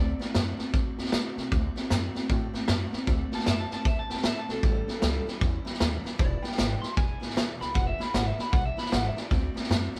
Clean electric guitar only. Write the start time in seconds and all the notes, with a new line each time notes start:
Already playing: D5
3.35 A5
3.46 E5
3.60 A5
3.73 A5
3.87 E5
3.99 A5
4.12 A5
4.26 E5
4.38 A5
4.51 A4
6.20 D5
6.43 G5
6.82 C6
6.97 G#5
7.61 B5
7.74 F#5
7.87 E5
8.01 B5
8.14 F#5
8.27 E5
8.41 B5
8.52 F#5
8.65 E5
8.79 B5
8.92 F#5
9.06 E5
9.19 D5